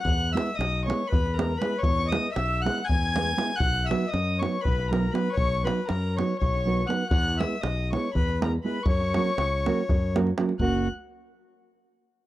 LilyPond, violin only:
\new Staff \with { instrumentName = "Violin" } { \time 7/8 \key fis \mixolydian \tempo 4 = 120 fis'''8 e'''8 dis'''8 cis'''8 b''8 ais''8 b''8 | cis'''8 dis'''8 e'''8 fis'''8 gis'''4. | fis'''8 e'''8 dis'''8 cis'''8 b''8 ais''8 b''8 | cis'''8 b''8 ais''8 cis'''8 cis'''4 fis'''8 |
fis'''8 e'''8 dis'''8 cis'''8 b''8 ais''8 b''8 | cis'''2~ cis'''8 r4 | fis'''8 r2. | }